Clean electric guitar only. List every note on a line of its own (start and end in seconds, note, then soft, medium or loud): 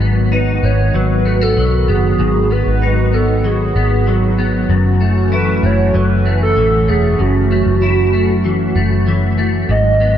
0.00 2.18 G#2 medium
0.00 0.94 F#3 medium
0.00 0.62 B3 soft
0.00 0.31 D#4 medium
0.32 2.81 D#4 medium
0.63 1.25 B3 soft
0.94 1.56 F#3 medium
1.25 1.41 A3 medium
1.41 1.87 B3 soft
1.57 3.44 F#3 medium
1.88 2.49 B3 soft
2.19 4.69 G#2 medium
2.51 3.12 B3 soft
2.82 4.76 D#4 medium
3.13 3.75 B3 soft
3.44 4.07 F#3 medium
3.76 4.37 B3 medium
4.07 5.35 F#3 medium
4.38 4.76 B3 medium
4.70 7.18 F#2 medium
5.01 5.62 A3 medium
5.32 7.81 E4 medium
5.63 6.24 A3 medium
5.94 6.55 E3 medium
6.26 6.87 A3 soft
6.57 8.43 E3 medium
6.88 7.50 A3 medium
7.19 9.69 F#2 medium
7.51 8.12 A3 medium
7.82 9.76 E4 medium
8.13 8.74 A3 soft
8.44 9.06 E3 medium
8.76 9.37 A3 medium
9.07 9.76 E3 medium
9.38 9.76 A3 medium
9.69 10.18 G#2 medium
10.00 10.18 B3 medium